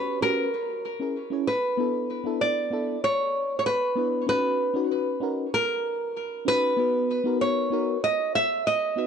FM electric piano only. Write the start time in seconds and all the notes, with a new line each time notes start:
Already playing: C#4 F#4 G4 B4
0.21 C#4 F#4 G4 B4
1.00 C#4 E4 G#4 A#4
1.30 C#4 E4 G#4 C#5
1.77 B3 D4 E4 A4
2.24 B3 D4 E4 A4
2.71 B3 D4 E4 A4
3.95 B3 D4 E4 B4
4.27 C#4 D#4 F#4 B4
4.74 C#4 D#4 F#4 B4
5.20 C#4 D#4 F#4 A#4
6.45 C#4 D#4 F#4 B4
6.77 B3 D#4 F#4 B4
7.24 B3 D#4 F#4 A#4
7.70 B3 D#4 F#4 A#4
8.96 B3 D#4 F#4 B4